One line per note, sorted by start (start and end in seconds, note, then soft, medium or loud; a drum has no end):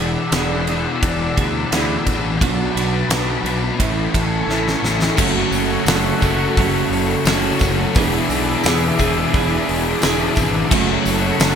0.00 0.16 E1 medium
0.00 0.33 E2 medium
0.00 0.35 B2 medium
0.00 0.31 E3 medium
0.00 0.36 E3 medium
0.00 2.44 B3 medium
0.00 0.33 B3 medium
0.00 0.33 D4 medium
0.00 0.35 G#4 medium
0.00 2.39 D5 medium
0.00 2.37 F#5 medium
0.00 2.39 E6 medium
0.32 0.85 E1 medium
0.32 1.03 E2 medium
0.32 1.02 E3 medium
0.32 0.69 B3 medium
0.32 0.67 D4 medium
0.32 snare loud
0.32 ride medium
0.36 0.71 B2 medium
0.36 0.68 E3 medium
0.36 0.66 G#4 medium
0.67 1.75 E3 medium
0.67 1.38 B3 medium
0.67 1.37 D4 medium
0.67 1.36 G#4 medium
0.67 ride medium
0.73 1.73 B2 medium
1.03 1.29 E1 loud
1.03 kick loud
1.03 ride medium
1.37 1.64 D2 medium
1.37 1.72 B3 medium
1.37 1.73 D4 medium
1.37 1.74 G#4 medium
1.37 kick medium
1.37 ride medium
1.72 1.98 D2 medium
1.72 2.40 E2 medium
1.72 2.10 B2 medium
1.72 2.39 E3 medium
1.72 2.40 B3 medium
1.72 2.41 D4 medium
1.72 2.41 G#4 medium
1.72 snare loud
1.72 ride medium
1.76 2.07 E3 medium
2.07 2.41 A1 medium
2.07 2.40 E3 medium
2.07 kick medium
2.07 ride medium
2.12 2.40 B2 medium
2.40 2.67 B1 medium
2.40 3.11 B2 loud
2.40 3.09 B2 medium
2.40 3.09 F#3 loud
2.40 2.77 F#3 medium
2.40 2.78 B3 loud
2.40 2.76 D4 loud
2.40 3.78 B4 medium
2.40 3.78 A5 medium
2.40 3.78 D6 medium
2.40 kick loud
2.40 ride medium
2.44 2.74 B3 loud
2.44 2.75 F#4 loud
2.75 3.02 B1 medium
2.75 3.11 F#3 medium
2.75 3.12 B3 medium
2.75 3.10 B3 medium
2.75 3.10 D4 medium
2.75 3.12 F#4 medium
2.75 ride medium
3.09 3.36 B1 medium
3.09 3.78 B2 medium
3.09 3.77 F#3 medium
3.09 3.46 F#3 medium
3.09 3.45 B3 medium
3.09 3.43 B3 medium
3.09 3.44 D4 medium
3.09 3.43 F#4 medium
3.09 snare loud
3.09 ride loud
3.43 3.70 B1 medium
3.43 3.79 F#3 medium
3.43 3.77 B3 medium
3.43 3.79 B3 medium
3.43 3.78 D4 medium
3.43 3.77 F#4 medium
3.43 ride medium
3.77 4.06 A1 medium
3.77 4.48 A2 medium
3.77 4.47 A2 medium
3.77 4.46 E3 loud
3.77 4.15 A3 loud
3.77 4.14 C#4 medium
3.77 4.12 E4 medium
3.77 5.17 A4 medium
3.77 5.17 G#5 medium
3.77 5.17 C#6 medium
3.77 kick loud
3.77 ride medium
3.81 4.48 E3 medium
3.81 4.50 A3 loud
4.14 4.41 A1 medium
4.14 4.48 A3 medium
4.14 4.49 C#4 medium
4.14 4.49 E4 medium
4.14 kick medium
4.14 ride medium
4.47 4.74 A1 medium
4.47 5.16 A2 medium
4.47 5.16 E3 medium
4.47 4.85 E3 medium
4.47 5.16 A3 medium
4.47 5.17 C#4 medium
4.47 5.17 E4 medium
4.47 snare medium
4.52 4.82 A3 medium
4.68 snare medium
4.82 5.09 A1 medium
4.82 5.16 A3 medium
4.82 snare medium
4.86 5.18 E3 medium
5.02 snare medium
5.16 5.43 F#1 loud
5.16 5.85 F#2 loud
5.16 5.86 C#3 loud
5.16 5.87 F#3 loud
5.16 5.88 F#3 loud
5.16 5.88 A3 loud
5.16 5.89 C#4 loud
5.16 7.92 A4 medium
5.16 7.92 F#5 medium
5.16 7.93 C#6 medium
5.16 kick loud
5.16 crash loud
5.16 tambourine medium
5.21 5.90 F#4 loud
5.51 5.76 F#1 loud
5.51 open hi-hat medium
5.51 tambourine medium
5.85 6.10 F#1 loud
5.85 6.56 F#2 medium
5.85 6.58 C#3 medium
5.85 6.56 F#3 medium
5.85 6.59 F#3 medium
5.85 snare loud
5.85 open hi-hat medium
5.85 tambourine medium
5.89 6.24 A3 medium
5.89 6.24 C#4 medium
5.89 6.21 F#4 medium
6.22 6.46 F#1 medium
6.22 7.25 F#3 medium
6.22 6.57 A3 medium
6.22 6.58 C#4 medium
6.22 6.59 F#4 medium
6.22 kick medium
6.22 open hi-hat medium
6.22 tambourine medium
6.57 6.81 F#1 loud
6.57 7.93 F#2 medium
6.57 7.63 C#3 loud
6.57 7.25 F#3 loud
6.57 7.60 F#3 medium
6.57 7.27 A3 loud
6.57 7.27 C#4 loud
6.57 7.28 F#4 loud
6.57 kick loud
6.57 open hi-hat medium
6.57 tambourine soft
6.90 7.14 F#1 medium
6.90 open hi-hat medium
7.25 7.50 F#1 medium
7.25 7.93 F#3 medium
7.25 7.94 A3 medium
7.25 7.94 C#4 medium
7.25 7.95 F#4 medium
7.25 snare loud
7.25 open hi-hat medium
7.25 tambourine loud
7.59 7.85 F#1 medium
7.59 7.93 F#3 medium
7.59 kick loud
7.59 open hi-hat medium
7.59 tambourine medium
7.64 7.95 C#3 medium
7.95 8.20 E1 medium
7.95 8.64 E2 medium
7.95 8.64 E3 loud
7.95 8.65 B3 loud
7.95 8.66 D4 loud
7.95 10.70 G#4 medium
7.95 8.67 G#4 loud
7.95 10.70 E5 medium
7.95 10.70 D6 medium
7.95 kick loud
7.95 open hi-hat medium
7.95 tambourine medium
7.99 8.66 B2 loud
7.99 8.67 E3 loud
8.29 8.54 B1 medium
8.29 open hi-hat medium
8.29 tambourine medium
8.64 8.89 E2 medium
8.64 9.32 E2 medium
8.64 9.34 B2 medium
8.64 9.32 E3 medium
8.64 9.01 B3 medium
8.64 9.00 D4 medium
8.64 snare loud
8.64 open hi-hat medium
8.64 tambourine medium
8.68 9.36 E3 medium
8.68 8.98 G#4 medium
8.99 9.23 E1 loud
8.99 10.00 E3 medium
8.99 9.33 B3 medium
8.99 9.34 D4 medium
8.99 9.35 G#4 medium
8.99 kick medium
8.99 open hi-hat medium
8.99 tambourine medium
9.33 9.58 E1 loud
9.33 10.69 E2 medium
9.33 10.38 B2 loud
9.33 10.00 E3 medium
9.33 10.35 E3 medium
9.33 10.02 B3 medium
9.33 10.03 D4 loud
9.33 10.04 G#4 loud
9.33 kick loud
9.33 open hi-hat medium
9.33 tambourine soft
9.69 9.93 E1 medium
9.69 open hi-hat medium
10.02 10.27 E1 medium
10.02 10.69 E3 medium
10.02 10.70 B3 medium
10.02 10.70 D4 medium
10.02 10.71 G#4 medium
10.02 snare loud
10.02 open hi-hat medium
10.02 tambourine loud
10.36 10.61 G#1 medium
10.36 10.71 B2 medium
10.36 10.69 E3 medium
10.36 kick medium
10.36 open hi-hat medium
10.36 tambourine medium
10.70 10.96 F#1 loud
10.70 11.39 F#2 medium
10.70 11.40 C#3 loud
10.70 11.39 F#3 loud
10.70 11.42 F#3 loud
10.70 11.40 A3 loud
10.70 11.41 C#4 loud
10.70 11.41 F#4 loud
10.70 11.55 A4 medium
10.70 11.55 F#5 medium
10.70 11.55 C#6 medium
10.70 kick loud
10.70 crash loud
10.70 tambourine medium
11.05 11.30 F#1 loud
11.05 open hi-hat medium
11.05 tambourine medium
11.40 11.55 F#1 medium
11.40 11.55 F#2 medium
11.40 11.55 C#3 medium
11.40 11.55 F#3 medium
11.40 11.55 A3 medium
11.40 11.55 C#4 medium
11.40 11.55 F#4 medium
11.40 snare loud
11.40 open hi-hat medium
11.40 tambourine loud